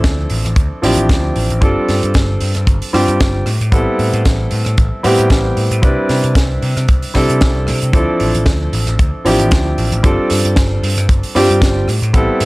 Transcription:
Already playing: grand piano F3 C4 D4 E4 A4
0.04 picked electric bass D2, kick, snare, closed hi-hat
0.30 picked electric bass A1, open hi-hat
0.45 picked electric bass A1, cross-stick, closed hi-hat
0.56 picked electric bass D2, kick, closed hi-hat
0.82 picked electric bass A1, grand piano F3 C4 D4 E4 G4, open hi-hat
0.97 picked electric bass A1, closed hi-hat
1.09 picked electric bass D2, kick, snare, closed hi-hat
1.36 picked electric bass A1, open hi-hat
1.50 picked electric bass A1, closed hi-hat
1.61 picked electric bass G1, grand piano G3 C4 D4 F4 A4, kick, closed hi-hat
1.89 picked electric bass G2, snare, open hi-hat
2.03 picked electric bass G2, closed hi-hat
2.14 picked electric bass G1, kick, snare, closed hi-hat
2.41 picked electric bass G2, open hi-hat
2.55 picked electric bass G2, cross-stick, closed hi-hat
2.67 picked electric bass G1, kick, closed hi-hat
2.82 open hi-hat
2.93 picked electric bass G2, grand piano G3 C4 D4 F4 G4, cross-stick, open hi-hat
3.08 picked electric bass G2, closed hi-hat
3.20 picked electric bass G1, kick, snare, closed hi-hat
3.46 picked electric bass A2, cross-stick, open hi-hat
3.61 picked electric bass A2, closed hi-hat
3.72 picked electric bass A1, grand piano G3 B3 C4 E4 A4, kick, closed hi-hat
3.99 picked electric bass A2, open hi-hat
4.14 picked electric bass A2, closed hi-hat
4.25 picked electric bass A1, kick, snare, closed hi-hat
4.51 picked electric bass A2, open hi-hat
4.65 picked electric bass A2, cross-stick, closed hi-hat
4.78 picked electric bass A1, kick, closed hi-hat
5.03 picked electric bass A2, grand piano G3 B3 C4 E4 G4, open hi-hat
5.19 picked electric bass A2, closed hi-hat
5.30 picked electric bass A1, kick, snare, closed hi-hat
5.57 picked electric bass A2, open hi-hat
5.71 picked electric bass A2, closed hi-hat
5.82 picked electric bass C2, grand piano G3 C4 D4 E4 B4, kick, closed hi-hat
6.09 picked electric bass C3, snare, open hi-hat
6.24 picked electric bass C3, closed hi-hat
6.35 picked electric bass C2, kick, snare, closed hi-hat
6.62 picked electric bass C3, open hi-hat
6.77 picked electric bass C3, cross-stick, closed hi-hat
6.88 picked electric bass C2, kick, closed hi-hat
7.02 open hi-hat
7.14 picked electric bass C3, grand piano G3 C4 D4 E4 A4, kick, cross-stick, open hi-hat
7.30 picked electric bass C3, closed hi-hat
7.41 picked electric bass C2, kick, snare, closed hi-hat
7.67 picked electric bass C3, cross-stick, open hi-hat
7.82 picked electric bass C3, closed hi-hat
7.93 picked electric bass D2, grand piano F3 C4 D4 E4 A4, kick, closed hi-hat
8.20 picked electric bass A1, open hi-hat
8.35 picked electric bass A1, closed hi-hat
8.46 picked electric bass D2, kick, snare, closed hi-hat
8.73 picked electric bass A1, open hi-hat
8.87 picked electric bass A1, cross-stick, closed hi-hat
8.99 picked electric bass D2, kick, closed hi-hat
9.25 picked electric bass A1, grand piano F3 C4 D4 E4 G4, open hi-hat
9.39 picked electric bass A1, closed hi-hat
9.51 picked electric bass D2, kick, snare, closed hi-hat
9.78 picked electric bass A1, open hi-hat
9.92 picked electric bass A1, closed hi-hat
10.03 picked electric bass G1, grand piano G3 C4 D4 F4 A4, kick, closed hi-hat
10.30 picked electric bass G2, snare, open hi-hat
10.45 picked electric bass G2, closed hi-hat
10.56 picked electric bass G1, kick, snare, closed hi-hat
10.83 picked electric bass G2, open hi-hat
10.97 picked electric bass G2, cross-stick, closed hi-hat
11.09 picked electric bass G1, kick, closed hi-hat
11.23 open hi-hat
11.35 picked electric bass G2, grand piano G3 C4 D4 F4 G4, cross-stick, open hi-hat
11.50 picked electric bass G2, closed hi-hat
11.62 picked electric bass G1, kick, snare, closed hi-hat
11.88 picked electric bass A2, cross-stick, open hi-hat
12.02 picked electric bass A2, closed hi-hat
12.13 picked electric bass A1, grand piano G3 B3 C4 E4 A4, kick, closed hi-hat
12.40 picked electric bass A2, open hi-hat

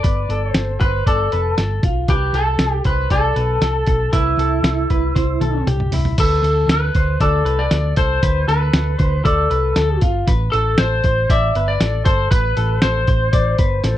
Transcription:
Already playing: lead electric guitar D5
0.03 picked electric bass G1, clean electric guitar B4, kick, closed hi-hat
0.29 picked electric bass G1, clean electric guitar A4, closed hi-hat
0.53 picked electric bass G1, lead electric guitar C5, snare, closed hi-hat
0.81 picked electric bass G1, lead electric guitar B4, clean electric guitar C5, kick, closed hi-hat
1.06 picked electric bass G1, lead electric guitar A4, clean electric guitar D5, kick, closed hi-hat
1.32 picked electric bass F1, clean electric guitar B4, closed hi-hat
1.58 picked electric bass G1, clean electric guitar A4, snare, closed hi-hat
1.83 picked electric bass B1, clean electric guitar F4, kick, closed hi-hat
2.08 picked electric bass C2, lead electric guitar G4, clean electric guitar B4, kick, closed hi-hat
2.33 picked electric bass C2, clean electric guitar A4, lead electric guitar A4, closed hi-hat
2.58 picked electric bass C2, snare, closed hi-hat
2.85 picked electric bass C2, lead electric guitar B4, clean electric guitar C5, kick, closed hi-hat
3.10 picked electric bass C2, lead electric guitar A4, clean electric guitar D5, kick, closed hi-hat
3.36 picked electric bass B1, clean electric guitar B4, closed hi-hat
3.61 picked electric bass C2, clean electric guitar A4, snare, closed hi-hat
3.87 picked electric bass B1, clean electric guitar A4, kick, closed hi-hat
4.13 picked electric bass C2, lead electric guitar E4, clean electric guitar B4, kick, closed hi-hat
4.37 picked electric bass C2, clean electric guitar A4, closed hi-hat
4.63 picked electric bass C2, snare, closed hi-hat
4.90 picked electric bass C2, clean electric guitar B4, kick, closed hi-hat
5.15 picked electric bass C2, clean electric guitar C5, kick, snare, closed hi-hat
5.40 picked electric bass B1, clean electric guitar A4, closed hi-hat, high tom
5.67 picked electric bass C2, clean electric guitar G4, closed hi-hat, mid tom
5.80 mid tom
5.92 picked electric bass C2, clean electric guitar E4, floor tom, open hi-hat
6.05 floor tom
6.18 picked electric bass D2, lead electric guitar A4, clean electric guitar B4, kick, closed hi-hat, crash
6.43 picked electric bass D2, clean electric guitar A4, closed hi-hat
6.67 picked electric bass D2, snare, closed hi-hat
6.72 lead electric guitar B4
6.95 picked electric bass D2, clean electric guitar C5, kick, closed hi-hat
7.20 picked electric bass D2, lead electric guitar A4, clean electric guitar D5, kick, closed hi-hat
7.45 picked electric bass C2, clean electric guitar B4, closed hi-hat
7.59 lead electric guitar D5
7.71 picked electric bass D2, clean electric guitar A4, snare, closed hi-hat
7.96 picked electric bass C2, clean electric guitar A4, lead electric guitar C5, kick, closed hi-hat
8.23 picked electric bass D2, clean electric guitar B4, kick, closed hi-hat
8.48 picked electric bass D2, clean electric guitar A4, lead electric guitar B4, closed hi-hat
8.73 picked electric bass D2, snare, closed hi-hat
8.99 picked electric bass D2, clean electric guitar C5, kick, closed hi-hat
9.25 picked electric bass D2, lead electric guitar A4, clean electric guitar D5, kick, closed hi-hat
9.50 picked electric bass C2, clean electric guitar B4, closed hi-hat
9.76 picked electric bass D2, clean electric guitar A4, snare, closed hi-hat
10.01 picked electric bass G1, clean electric guitar F4, kick, closed hi-hat
10.27 picked electric bass A1, clean electric guitar B4, kick, closed hi-hat
10.52 picked electric bass A1, lead electric guitar A4, clean electric guitar A4, closed hi-hat
10.78 picked electric bass A1, lead electric guitar C5, snare, closed hi-hat
11.04 picked electric bass A1, clean electric guitar C5, kick, closed hi-hat
11.30 picked electric bass A1, clean electric guitar D5, lead electric guitar E5, kick, closed hi-hat
11.55 picked electric bass G1, clean electric guitar B4, closed hi-hat
11.68 lead electric guitar D5
11.80 picked electric bass A1, clean electric guitar A4, snare, closed hi-hat
12.05 picked electric bass G1, clean electric guitar A4, lead electric guitar C5, kick, closed hi-hat
12.31 picked electric bass A1, lead electric guitar B4, clean electric guitar B4, kick, closed hi-hat
12.57 picked electric bass A1, clean electric guitar A4, closed hi-hat
12.82 picked electric bass A1, lead electric guitar C5, snare, closed hi-hat
13.07 picked electric bass A1, clean electric guitar C5, kick, closed hi-hat
13.33 picked electric bass A1, clean electric guitar D5, kick, closed hi-hat
13.58 picked electric bass G1, clean electric guitar B4, kick, closed hi-hat
13.84 picked electric bass A1, clean electric guitar A4, snare, closed hi-hat

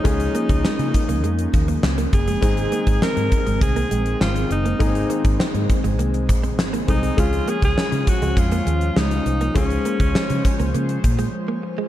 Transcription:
Already playing: analog synth pad F3 C#4, alto saxophone D#4
0.04 fingered electric bass C#2, grand piano G#3 C#4 F4 G#4, clean electric guitar G#3, analog synth pad A#3, kick, closed hi-hat
0.20 closed hi-hat
0.35 clean electric guitar A#3, closed hi-hat
0.49 fingered electric bass C#2, muted clean electric guitar stroke, kick, closed hi-hat
0.64 clean electric guitar G#3, muted fingered electric bass stroke, snare
0.79 fingered electric bass C#3, muted clean electric guitar stroke, closed hi-hat
0.94 kick, closed hi-hat
1.09 fingered electric bass C#2, clean electric guitar A#3, closed hi-hat
1.24 fingered electric bass F2, clean electric guitar G#3, closed hi-hat
1.39 closed hi-hat
1.53 fingered electric bass D#2, muted clean electric guitar stroke, kick, closed hi-hat
1.68 clean electric guitar A#3, closed hi-hat
1.83 fingered electric bass C#2, snare
1.98 clean electric guitar A#3, closed hi-hat
2.13 fingered electric bass F#1, alto saxophone G#4, muted clean electric guitar stroke, kick, closed hi-hat
2.27 clean electric guitar G#3, closed hi-hat
2.41 fingered electric bass G#1, analog synth pad D#3 G#3 C4, grand piano G#3 C4 D#4 G#4, clean electric guitar G#3, kick, closed hi-hat
2.57 closed hi-hat
2.72 clean electric guitar A#3, closed hi-hat
2.87 fingered electric bass G#1, muted clean electric guitar stroke, kick, closed hi-hat
3.02 clean electric guitar C4, alto saxophone A#4, snare
3.17 fingered electric bass G#2, muted clean electric guitar stroke, closed hi-hat
3.32 kick, closed hi-hat
3.46 fingered electric bass G#1, clean electric guitar G#3, closed hi-hat
3.61 fingered electric bass C2, alto saxophone G#4, muted clean electric guitar stroke, kick, closed hi-hat
3.76 clean electric guitar A#3, closed hi-hat
3.91 fingered electric bass A#1, clean electric guitar G#3, closed hi-hat
4.06 closed hi-hat
4.21 fingered electric bass G#1, clean electric guitar G#3, alto saxophone F4, snare
4.36 closed hi-hat
4.50 fingered electric bass F#1, alto saxophone D#4, muted clean electric guitar stroke, closed hi-hat
4.65 clean electric guitar A#3, closed hi-hat
4.79 fingered electric bass G#1, grand piano G#3 A#3 D#4 G#4, clean electric guitar G#3, kick, closed hi-hat
4.86 grand piano C4
4.95 closed hi-hat
5.10 clean electric guitar A#3, closed hi-hat
5.25 fingered electric bass G#1, muted clean electric guitar stroke, kick, closed hi-hat
5.40 clean electric guitar C4, muted fingered electric bass stroke, snare
5.54 fingered electric bass G#2, muted clean electric guitar stroke, closed hi-hat
5.70 kick, closed hi-hat
5.84 fingered electric bass G#1, clean electric guitar G#3, closed hi-hat
5.99 fingered electric bass C2, clean electric guitar A#3, closed hi-hat
6.14 closed hi-hat
6.29 fingered electric bass A#1, muted clean electric guitar stroke, kick, closed hi-hat
6.43 clean electric guitar C4, closed hi-hat
6.59 fingered electric bass G#1, snare
6.73 clean electric guitar A#3, closed hi-hat
6.88 fingered electric bass C2, grand piano G#3 C4 D#4 G#4, alto saxophone D#4, muted clean electric guitar stroke, kick, closed hi-hat
7.03 clean electric guitar G#3, closed hi-hat
7.17 fingered electric bass C#2, analog synth pad F3 C#4, grand piano G#3 C#4 F4 G#4, clean electric guitar G#3, alto saxophone F4, kick, closed hi-hat
7.33 closed hi-hat
7.48 clean electric guitar A#3, alto saxophone G#4, closed hi-hat
7.62 fingered electric bass C#2, alto saxophone G#4, muted clean electric guitar stroke, kick, closed hi-hat
7.77 clean electric guitar C#4, muted fingered electric bass stroke, snare
7.92 fingered electric bass C#3, muted clean electric guitar stroke, closed hi-hat
8.07 alto saxophone F#4, kick, closed hi-hat
8.22 fingered electric bass C#2, clean electric guitar G#3, closed hi-hat
8.37 fingered electric bass F2, alto saxophone F4, muted clean electric guitar stroke, kick, closed hi-hat
8.52 clean electric guitar A#3, closed hi-hat
8.66 fingered electric bass D#2, clean electric guitar G#3, closed hi-hat
8.81 closed hi-hat
8.96 fingered electric bass C#2, clean electric guitar G#3, alto saxophone D#4, snare
9.11 closed hi-hat
9.26 fingered electric bass C2, muted clean electric guitar stroke, closed hi-hat
9.41 clean electric guitar A#3, closed hi-hat
9.54 fingered electric bass C#2, grand piano G#3 C#4 F4 G#4, clean electric guitar G#3, alto saxophone C#4, analog synth pad C5, kick, closed hi-hat
9.70 closed hi-hat
9.85 clean electric guitar A#3, closed hi-hat
10.00 fingered electric bass C#2, muted clean electric guitar stroke, kick, closed hi-hat
10.15 clean electric guitar G#3, muted fingered electric bass stroke, snare
10.30 fingered electric bass C#3, muted clean electric guitar stroke, closed hi-hat
10.45 kick, closed hi-hat
10.60 fingered electric bass C#2, clean electric guitar A#3, closed hi-hat
10.74 fingered electric bass C#3, clean electric guitar A#3, closed hi-hat
10.89 closed hi-hat
11.04 fingered electric bass A#2, muted clean electric guitar stroke, kick, closed hi-hat
11.19 clean electric guitar G#3, closed hi-hat
11.48 clean electric guitar A#3
11.63 muted clean electric guitar stroke
11.78 clean electric guitar G#3

